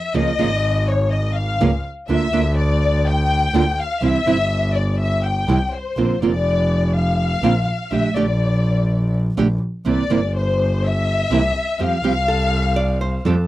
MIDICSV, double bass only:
0, 0, Header, 1, 2, 480
1, 0, Start_track
1, 0, Tempo, 485830
1, 142, Time_signature, 4, 2, 24, 8
1, 13310, End_track
2, 0, Start_track
2, 0, Title_t, "Double bass"
2, 0, Program_c, 0, 43
2, 139, Note_on_c, 0, 37, 57
2, 344, Note_off_c, 0, 37, 0
2, 376, Note_on_c, 0, 32, 93
2, 1519, Note_off_c, 0, 32, 0
2, 1585, Note_on_c, 0, 37, 85
2, 1785, Note_off_c, 0, 37, 0
2, 2063, Note_on_c, 0, 38, 60
2, 2262, Note_off_c, 0, 38, 0
2, 2294, Note_on_c, 0, 38, 99
2, 3431, Note_off_c, 0, 38, 0
2, 3488, Note_on_c, 0, 38, 81
2, 3691, Note_off_c, 0, 38, 0
2, 3968, Note_on_c, 0, 36, 57
2, 4170, Note_off_c, 0, 36, 0
2, 4204, Note_on_c, 0, 31, 86
2, 5350, Note_off_c, 0, 31, 0
2, 5410, Note_on_c, 0, 36, 80
2, 5616, Note_off_c, 0, 36, 0
2, 5895, Note_on_c, 0, 34, 58
2, 6101, Note_off_c, 0, 34, 0
2, 6139, Note_on_c, 0, 29, 99
2, 7283, Note_off_c, 0, 29, 0
2, 7333, Note_on_c, 0, 34, 88
2, 7539, Note_off_c, 0, 34, 0
2, 7820, Note_on_c, 0, 34, 57
2, 8022, Note_off_c, 0, 34, 0
2, 8060, Note_on_c, 0, 34, 96
2, 9198, Note_off_c, 0, 34, 0
2, 9260, Note_on_c, 0, 34, 85
2, 9459, Note_off_c, 0, 34, 0
2, 9737, Note_on_c, 0, 36, 56
2, 9936, Note_off_c, 0, 36, 0
2, 9976, Note_on_c, 0, 31, 92
2, 11109, Note_off_c, 0, 31, 0
2, 11165, Note_on_c, 0, 36, 84
2, 11368, Note_off_c, 0, 36, 0
2, 11653, Note_on_c, 0, 41, 61
2, 11852, Note_off_c, 0, 41, 0
2, 11892, Note_on_c, 0, 36, 89
2, 13038, Note_off_c, 0, 36, 0
2, 13087, Note_on_c, 0, 41, 87
2, 13296, Note_off_c, 0, 41, 0
2, 13310, End_track
0, 0, End_of_file